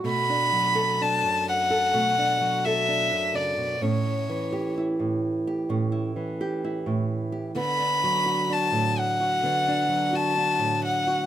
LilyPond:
<<
  \new Staff \with { instrumentName = "Violin" } { \time 4/4 \key d \major \tempo 4 = 64 b''4 a''8 fis''4~ fis''16 e''8. d''8 | cis''4 r2. | b''4 a''8 fis''4~ fis''16 a''8. fis''8 | }
  \new Staff \with { instrumentName = "Nylon-string guitar" } { \time 4/4 \key d \major << { <a fis'>16 d'8 a'16 d'8. a'16 a16 d'8 a'16 d'4 | cis'16 e'8 g'16 e'8. g'16 cis'16 e'8 g'16 e'8. g'16 | b16 d'8 fis'16 d'8. fis'16 b16 d'8 fis'16 d'8. fis'16 | } \\ { b,8 fis8. fis,8. b,8 fis8. fis,16 cis16 b,16 | a,8 e8. a,8. a,8 e8. a,8. | d8 fis8. a,8. d8 fis8. a,8. | } >> }
>>